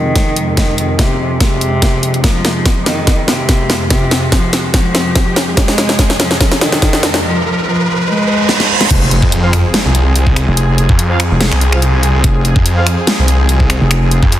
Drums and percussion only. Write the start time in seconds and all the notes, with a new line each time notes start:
0.16 kick, snare, closed hi-hat
0.36 closed hi-hat
0.57 kick, snare, closed hi-hat
0.78 closed hi-hat
0.99 kick, snare, closed hi-hat
1.40 kick, snare, closed hi-hat
1.61 closed hi-hat
1.82 kick, snare, closed hi-hat
2.03 closed hi-hat
2.14 closed hi-hat
2.24 kick, snare, closed hi-hat
2.45 snare, closed hi-hat
2.66 kick, snare, closed hi-hat
2.86 snare, open hi-hat
3.07 kick, snare, closed hi-hat
3.28 snare, closed hi-hat
3.49 kick, snare, closed hi-hat
3.70 snare, closed hi-hat
3.90 kick, snare, closed hi-hat
4.11 snare, closed hi-hat
4.32 kick, snare, closed hi-hat
4.53 snare, open hi-hat
4.74 kick, snare, closed hi-hat
4.95 snare, closed hi-hat
5.15 kick, snare, closed hi-hat
5.36 snare, closed hi-hat
5.57 kick, snare, closed hi-hat
5.68 snare
5.78 snare, closed hi-hat
5.89 snare
5.99 kick, snare, closed hi-hat
6.10 snare
6.20 snare, open hi-hat
6.31 snare
6.41 kick, snare, closed hi-hat
6.52 snare
6.61 snare, closed hi-hat
6.72 snare
6.82 kick, snare, closed hi-hat
6.93 snare
7.03 snare, closed hi-hat
7.14 snare
8.49 snare
8.60 snare
8.81 snare
8.90 kick, closed hi-hat, crash
9.11 closed hi-hat
9.22 kick
9.32 closed hi-hat
9.53 finger snap, open hi-hat
9.74 snare, closed hi-hat
9.95 closed hi-hat
10.16 closed hi-hat
10.27 kick
10.36 finger snap, closed hi-hat
10.57 closed hi-hat
10.78 closed hi-hat
10.89 kick
10.99 closed hi-hat
11.20 finger snap, open hi-hat
11.41 snare, closed hi-hat
11.52 finger snap
11.61 closed hi-hat
11.72 finger snap
11.82 closed hi-hat
12.03 closed hi-hat
12.24 kick, closed hi-hat
12.45 closed hi-hat
12.56 kick
12.66 closed hi-hat
12.87 finger snap, open hi-hat
13.07 snare, closed hi-hat
13.28 closed hi-hat
13.49 closed hi-hat
13.60 kick
13.70 finger snap, closed hi-hat
13.91 finger snap, closed hi-hat
14.11 closed hi-hat
14.23 kick
14.32 closed hi-hat